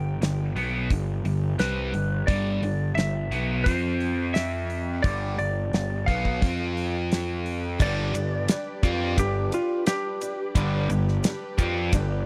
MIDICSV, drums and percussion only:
0, 0, Header, 1, 2, 480
1, 0, Start_track
1, 0, Tempo, 688863
1, 1591, Time_signature, 4, 2, 24, 8
1, 8542, End_track
2, 0, Start_track
2, 0, Title_t, "Drums"
2, 154, Note_on_c, 9, 46, 65
2, 161, Note_on_c, 9, 38, 108
2, 223, Note_off_c, 9, 46, 0
2, 231, Note_off_c, 9, 38, 0
2, 394, Note_on_c, 9, 46, 50
2, 464, Note_off_c, 9, 46, 0
2, 630, Note_on_c, 9, 36, 94
2, 630, Note_on_c, 9, 46, 66
2, 700, Note_off_c, 9, 36, 0
2, 700, Note_off_c, 9, 46, 0
2, 871, Note_on_c, 9, 46, 48
2, 941, Note_off_c, 9, 46, 0
2, 1108, Note_on_c, 9, 46, 63
2, 1116, Note_on_c, 9, 38, 100
2, 1178, Note_off_c, 9, 46, 0
2, 1185, Note_off_c, 9, 38, 0
2, 1350, Note_on_c, 9, 46, 46
2, 1420, Note_off_c, 9, 46, 0
2, 1590, Note_on_c, 9, 36, 110
2, 1592, Note_on_c, 9, 46, 66
2, 1660, Note_off_c, 9, 36, 0
2, 1661, Note_off_c, 9, 46, 0
2, 1831, Note_on_c, 9, 46, 53
2, 1901, Note_off_c, 9, 46, 0
2, 2073, Note_on_c, 9, 46, 58
2, 2081, Note_on_c, 9, 38, 100
2, 2143, Note_off_c, 9, 46, 0
2, 2151, Note_off_c, 9, 38, 0
2, 2313, Note_on_c, 9, 46, 45
2, 2382, Note_off_c, 9, 46, 0
2, 2550, Note_on_c, 9, 46, 67
2, 2552, Note_on_c, 9, 36, 102
2, 2620, Note_off_c, 9, 46, 0
2, 2621, Note_off_c, 9, 36, 0
2, 2790, Note_on_c, 9, 46, 45
2, 2860, Note_off_c, 9, 46, 0
2, 3031, Note_on_c, 9, 46, 66
2, 3038, Note_on_c, 9, 38, 92
2, 3100, Note_off_c, 9, 46, 0
2, 3108, Note_off_c, 9, 38, 0
2, 3274, Note_on_c, 9, 46, 47
2, 3343, Note_off_c, 9, 46, 0
2, 3512, Note_on_c, 9, 46, 59
2, 3513, Note_on_c, 9, 36, 117
2, 3581, Note_off_c, 9, 46, 0
2, 3583, Note_off_c, 9, 36, 0
2, 3754, Note_on_c, 9, 46, 49
2, 3823, Note_off_c, 9, 46, 0
2, 3995, Note_on_c, 9, 46, 58
2, 4002, Note_on_c, 9, 38, 105
2, 4064, Note_off_c, 9, 46, 0
2, 4072, Note_off_c, 9, 38, 0
2, 4235, Note_on_c, 9, 36, 75
2, 4235, Note_on_c, 9, 46, 44
2, 4305, Note_off_c, 9, 36, 0
2, 4305, Note_off_c, 9, 46, 0
2, 4355, Note_on_c, 9, 36, 68
2, 4425, Note_off_c, 9, 36, 0
2, 4475, Note_on_c, 9, 36, 112
2, 4476, Note_on_c, 9, 46, 71
2, 4545, Note_off_c, 9, 36, 0
2, 4545, Note_off_c, 9, 46, 0
2, 4718, Note_on_c, 9, 46, 49
2, 4788, Note_off_c, 9, 46, 0
2, 4958, Note_on_c, 9, 46, 65
2, 4966, Note_on_c, 9, 38, 98
2, 5028, Note_off_c, 9, 46, 0
2, 5035, Note_off_c, 9, 38, 0
2, 5197, Note_on_c, 9, 46, 49
2, 5267, Note_off_c, 9, 46, 0
2, 5435, Note_on_c, 9, 36, 114
2, 5435, Note_on_c, 9, 82, 92
2, 5437, Note_on_c, 9, 49, 123
2, 5505, Note_off_c, 9, 36, 0
2, 5505, Note_off_c, 9, 82, 0
2, 5507, Note_off_c, 9, 49, 0
2, 5677, Note_on_c, 9, 51, 79
2, 5677, Note_on_c, 9, 82, 78
2, 5747, Note_off_c, 9, 51, 0
2, 5747, Note_off_c, 9, 82, 0
2, 5911, Note_on_c, 9, 51, 91
2, 5916, Note_on_c, 9, 82, 110
2, 5919, Note_on_c, 9, 38, 111
2, 5981, Note_off_c, 9, 51, 0
2, 5986, Note_off_c, 9, 82, 0
2, 5988, Note_off_c, 9, 38, 0
2, 6153, Note_on_c, 9, 51, 62
2, 6154, Note_on_c, 9, 36, 99
2, 6159, Note_on_c, 9, 82, 75
2, 6223, Note_off_c, 9, 51, 0
2, 6224, Note_off_c, 9, 36, 0
2, 6229, Note_off_c, 9, 82, 0
2, 6395, Note_on_c, 9, 36, 94
2, 6395, Note_on_c, 9, 51, 98
2, 6401, Note_on_c, 9, 82, 99
2, 6464, Note_off_c, 9, 36, 0
2, 6465, Note_off_c, 9, 51, 0
2, 6470, Note_off_c, 9, 82, 0
2, 6634, Note_on_c, 9, 51, 70
2, 6638, Note_on_c, 9, 82, 81
2, 6704, Note_off_c, 9, 51, 0
2, 6708, Note_off_c, 9, 82, 0
2, 6873, Note_on_c, 9, 51, 89
2, 6878, Note_on_c, 9, 82, 92
2, 6881, Note_on_c, 9, 38, 111
2, 6943, Note_off_c, 9, 51, 0
2, 6948, Note_off_c, 9, 82, 0
2, 6951, Note_off_c, 9, 38, 0
2, 7117, Note_on_c, 9, 51, 73
2, 7120, Note_on_c, 9, 82, 83
2, 7186, Note_off_c, 9, 51, 0
2, 7189, Note_off_c, 9, 82, 0
2, 7354, Note_on_c, 9, 36, 112
2, 7356, Note_on_c, 9, 51, 97
2, 7361, Note_on_c, 9, 82, 101
2, 7424, Note_off_c, 9, 36, 0
2, 7425, Note_off_c, 9, 51, 0
2, 7430, Note_off_c, 9, 82, 0
2, 7592, Note_on_c, 9, 51, 72
2, 7599, Note_on_c, 9, 82, 69
2, 7662, Note_off_c, 9, 51, 0
2, 7669, Note_off_c, 9, 82, 0
2, 7722, Note_on_c, 9, 38, 37
2, 7791, Note_off_c, 9, 38, 0
2, 7831, Note_on_c, 9, 51, 95
2, 7832, Note_on_c, 9, 82, 107
2, 7839, Note_on_c, 9, 38, 104
2, 7901, Note_off_c, 9, 51, 0
2, 7901, Note_off_c, 9, 82, 0
2, 7909, Note_off_c, 9, 38, 0
2, 8072, Note_on_c, 9, 36, 95
2, 8073, Note_on_c, 9, 51, 71
2, 8073, Note_on_c, 9, 82, 76
2, 8142, Note_off_c, 9, 36, 0
2, 8143, Note_off_c, 9, 51, 0
2, 8143, Note_off_c, 9, 82, 0
2, 8310, Note_on_c, 9, 51, 104
2, 8312, Note_on_c, 9, 36, 95
2, 8312, Note_on_c, 9, 82, 100
2, 8379, Note_off_c, 9, 51, 0
2, 8381, Note_off_c, 9, 36, 0
2, 8382, Note_off_c, 9, 82, 0
2, 8542, End_track
0, 0, End_of_file